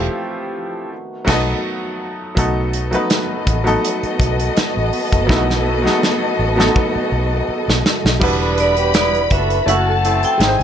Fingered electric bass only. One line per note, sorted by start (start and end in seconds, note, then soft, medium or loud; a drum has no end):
1.27 1.53 B1 loud
2.37 2.94 B1 medium
3.47 3.75 A1 medium
4.03 muted fingered electric bass stroke soft
4.20 4.48 B1 medium
4.57 muted fingered electric bass stroke soft
4.77 4.90 A1 medium
5.13 5.29 F#1 medium
5.29 5.86 B1 loud
6.39 6.67 A1 medium
6.96 muted fingered electric bass stroke soft
7.12 7.40 B1 loud
7.49 muted fingered electric bass stroke soft
7.68 7.81 B1 medium
8.05 8.18 B1 medium
8.21 9.27 E1 loud
9.31 9.59 F#1 loud
9.67 10.23 F#1 medium
10.40 10.55 G#1 loud
10.59 10.63 C2 medium